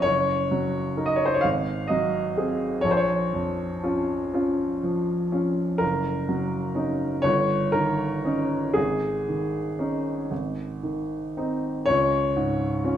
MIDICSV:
0, 0, Header, 1, 2, 480
1, 0, Start_track
1, 0, Tempo, 931677
1, 27, Time_signature, 12, 3, 24, 8
1, 1467, Tempo, 990099
1, 2907, Tempo, 940439
1, 3387, Tempo, 1001669
1, 4347, Tempo, 1039861
1, 5787, Tempo, 960000
1, 6332, End_track
2, 0, Start_track
2, 0, Title_t, "Grand piano"
2, 0, Program_c, 0, 0
2, 0, Control_c, 0, 64, 127
2, 11, Note_on_c, 0, 73, 80
2, 26, Note_on_c, 0, 30, 46
2, 35, Control_c, 0, 64, 0
2, 134, Control_c, 0, 64, 127
2, 264, Note_on_c, 0, 54, 33
2, 498, Note_on_c, 0, 63, 29
2, 500, Note_on_c, 0, 70, 33
2, 542, Note_off_c, 0, 73, 0
2, 545, Note_on_c, 0, 75, 56
2, 594, Note_off_c, 0, 75, 0
2, 596, Note_on_c, 0, 73, 54
2, 644, Note_off_c, 0, 54, 0
2, 644, Note_off_c, 0, 73, 0
2, 647, Note_on_c, 0, 72, 60
2, 691, Note_on_c, 0, 73, 58
2, 692, Note_off_c, 0, 72, 0
2, 715, Note_off_c, 0, 63, 0
2, 716, Note_off_c, 0, 70, 0
2, 717, Note_off_c, 0, 30, 0
2, 726, Note_on_c, 0, 77, 66
2, 738, Note_off_c, 0, 73, 0
2, 743, Note_on_c, 0, 32, 45
2, 748, Control_c, 0, 64, 0
2, 839, Control_c, 0, 64, 127
2, 966, Note_on_c, 0, 75, 54
2, 968, Note_off_c, 0, 77, 0
2, 980, Note_on_c, 0, 54, 37
2, 1221, Note_on_c, 0, 60, 29
2, 1223, Note_on_c, 0, 68, 31
2, 1369, Note_off_c, 0, 54, 0
2, 1448, Note_off_c, 0, 60, 0
2, 1449, Note_off_c, 0, 32, 0
2, 1449, Note_off_c, 0, 68, 0
2, 1449, Note_on_c, 0, 73, 66
2, 1463, Note_off_c, 0, 75, 0
2, 1465, Note_on_c, 0, 34, 44
2, 1477, Control_c, 0, 64, 0
2, 1495, Note_off_c, 0, 73, 0
2, 1497, Note_on_c, 0, 72, 57
2, 1526, Note_on_c, 0, 73, 67
2, 1537, Note_off_c, 0, 72, 0
2, 1552, Control_c, 0, 64, 127
2, 1704, Note_on_c, 0, 41, 37
2, 1945, Note_on_c, 0, 61, 30
2, 1947, Note_on_c, 0, 65, 33
2, 2090, Note_off_c, 0, 41, 0
2, 2167, Note_off_c, 0, 61, 0
2, 2168, Note_off_c, 0, 65, 0
2, 2190, Note_on_c, 0, 61, 31
2, 2193, Note_on_c, 0, 65, 34
2, 2411, Note_off_c, 0, 61, 0
2, 2412, Note_off_c, 0, 65, 0
2, 2429, Note_on_c, 0, 53, 30
2, 2667, Note_on_c, 0, 61, 29
2, 2669, Note_on_c, 0, 65, 32
2, 2814, Note_off_c, 0, 53, 0
2, 2886, Note_off_c, 0, 61, 0
2, 2887, Note_off_c, 0, 34, 0
2, 2887, Note_off_c, 0, 65, 0
2, 2890, Note_on_c, 0, 70, 64
2, 2900, Note_off_c, 0, 73, 0
2, 2904, Note_on_c, 0, 30, 42
2, 2917, Control_c, 0, 64, 0
2, 3004, Control_c, 0, 64, 127
2, 3146, Note_on_c, 0, 54, 31
2, 3383, Note_on_c, 0, 61, 27
2, 3386, Note_on_c, 0, 63, 32
2, 3525, Note_off_c, 0, 54, 0
2, 3600, Note_off_c, 0, 30, 0
2, 3600, Note_off_c, 0, 61, 0
2, 3602, Note_off_c, 0, 63, 0
2, 3608, Note_on_c, 0, 73, 76
2, 3613, Note_off_c, 0, 70, 0
2, 3619, Note_on_c, 0, 31, 49
2, 3631, Control_c, 0, 64, 0
2, 3722, Control_c, 0, 64, 127
2, 3848, Note_on_c, 0, 70, 70
2, 3857, Note_off_c, 0, 73, 0
2, 3862, Note_on_c, 0, 51, 34
2, 4101, Note_on_c, 0, 61, 31
2, 4101, Note_on_c, 0, 63, 35
2, 4248, Note_off_c, 0, 51, 0
2, 4325, Note_off_c, 0, 61, 0
2, 4326, Note_off_c, 0, 31, 0
2, 4326, Note_off_c, 0, 63, 0
2, 4334, Note_on_c, 0, 68, 57
2, 4339, Note_off_c, 0, 70, 0
2, 4349, Note_on_c, 0, 32, 39
2, 4355, Control_c, 0, 64, 0
2, 4436, Control_c, 0, 64, 127
2, 4588, Note_on_c, 0, 51, 29
2, 4822, Note_on_c, 0, 61, 28
2, 4826, Note_on_c, 0, 63, 28
2, 4965, Note_off_c, 0, 51, 0
2, 5041, Note_off_c, 0, 32, 0
2, 5041, Note_off_c, 0, 61, 0
2, 5042, Note_off_c, 0, 63, 0
2, 5053, Note_off_c, 0, 68, 0
2, 5062, Note_on_c, 0, 32, 31
2, 5069, Control_c, 0, 64, 0
2, 5162, Control_c, 0, 64, 127
2, 5303, Note_on_c, 0, 51, 28
2, 5552, Note_on_c, 0, 60, 24
2, 5554, Note_on_c, 0, 63, 26
2, 5696, Note_off_c, 0, 51, 0
2, 5769, Note_off_c, 0, 32, 0
2, 5769, Note_off_c, 0, 60, 0
2, 5770, Note_off_c, 0, 63, 0
2, 5775, Note_on_c, 0, 73, 80
2, 5788, Note_on_c, 0, 37, 45
2, 5795, Control_c, 0, 64, 0
2, 5889, Control_c, 0, 64, 127
2, 6029, Note_on_c, 0, 44, 39
2, 6269, Note_on_c, 0, 61, 32
2, 6269, Note_on_c, 0, 65, 33
2, 6332, Note_off_c, 0, 37, 0
2, 6332, Note_off_c, 0, 44, 0
2, 6332, Note_off_c, 0, 61, 0
2, 6332, Note_off_c, 0, 65, 0
2, 6332, Note_off_c, 0, 73, 0
2, 6332, End_track
0, 0, End_of_file